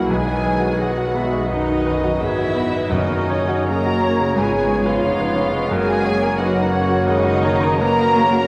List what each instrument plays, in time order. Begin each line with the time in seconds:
Already playing: grand piano C#2 A#3 E4 F#4 G#4 A#4
0.06 double bass section B1, grand piano B1, trombone section D#3 F#3, viola section D#3 B3, cello section G#3, french horn section B3 F#4, bassoon D#4, violin section G#4 G#5, flute B4, clarinet B4
0.27 grand piano D#4
0.43 viola section E3, grand piano B4, flute C#5 D#5
0.60 grand piano F#4
0.77 trombone section D#3 F#3, cello section F#3, viola section F#3, french horn section B3 F#4, violin section F#4 F#5, grand piano G#4, flute D#5
0.97 grand piano F#4
1.14 viola section G#3, grand piano B3, flute E5
1.33 grand piano D#4
1.49 grand piano F#2, trombone section D#3 F#3, cello section D#3, viola section F#3 D#4, french horn section B3 F#4, violin section D#4 D#5, flute F#5
1.69 grand piano D#4
1.86 viola section C#4, grand piano B4
2.04 grand piano F#4
2.20 double bass section G#1, cello section E3, viola section B3, violin section E4 E5, grand piano G#4, flute C#5
2.38 grand piano F#4
2.55 grand piano B3, flute D#5
2.72 grand piano D#4
2.89 double bass section F#1, grand piano F#2, timpani F#2, trombone section C#3 F#3, cello section D#3, viola section A#3 C#4, french horn section C#4 F#4, bassoon C#4, violin section D#4 D#5, clarinet C#5, flute C#5
2.96 flute A#4
3.10 grand piano C#4
3.29 viola section D#4, grand piano C#5, flute C#5
3.49 grand piano F#4
3.67 trombone section C#3 F#3, cello section A#3, french horn section C#4 F#4, viola section C#4, grand piano G#4, violin section A#4 A#5, flute F5
3.72 flute D#5
3.85 grand piano F#4
4.03 grand piano C#4, flute C#5
4.20 grand piano C#3
4.36 double bass section G#1, grand piano G#2, trombone section C#3 B3, cello section G#3, french horn section C#4 G#4, viola section F4, violin section G#4 G#5, flute B4
4.52 grand piano C#4
4.68 grand piano C#5
4.86 cello section F3, violin section F4 F5, grand piano B4
5.03 double bass section F1, bassoon B3, viola section D#4, flute C#5, grand piano C#5
5.20 grand piano B4
5.35 grand piano C#4, viola section C#4, flute B4
5.52 grand piano G#3
5.70 double bass section F#1, grand piano F#2, trombone section C#3 A#3, cello section G#3, bassoon A#3, viola section A#3 C#4, french horn section C#4 F#4, violin section G#4 G#5, flute A#4
5.89 grand piano F#4
6.04 flute C#5, grand piano C#5
6.23 grand piano A#4
6.38 trombone section C#3 A#3, cello section F#3, viola section A#3 D#4, french horn section C#4 F#4, violin section F#4 F#5, grand piano B4, flute D#5
6.56 grand piano A#4
6.72 grand piano C#4, viola section C#4, flute C#5
6.89 grand piano F#4
7.06 grand piano C#3, cello section D#3, viola section G#3 C#4, violin section D#4 D#5, flute F#5
7.24 grand piano F#4
7.43 viola section F#3, grand piano C#5, flute A#5
7.60 grand piano A#4, flute A#5 C#6
7.77 trombone section C#3 A#3, viola section F#3, violin section A#4 A#5, grand piano B4, flute A5 A#5
7.82 viola section A#3, cello section A#3, french horn section C#4 F#4
7.99 grand piano A#4
8.16 grand piano C#4
8.33 grand piano F#4